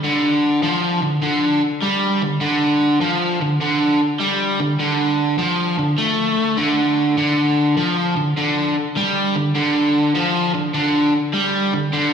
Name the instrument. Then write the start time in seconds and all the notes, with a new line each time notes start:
overdriven electric guitar
0.04 D3
0.63 F3
1.02 D3
1.22 D3
1.82 G3
2.22 D3
2.41 D3
3.01 F3
3.41 D3
3.61 D3
4.20 G3
4.60 D3
4.79 D3
5.38 F3
5.79 D3
5.98 A3
6.57 D3
7.18 D3
7.77 F3
8.17 D3
8.37 D3
8.97 G3
9.35 D3
9.55 D3
10.15 F3
10.55 D3
10.74 D3
11.33 G3
11.74 D3
11.93 D3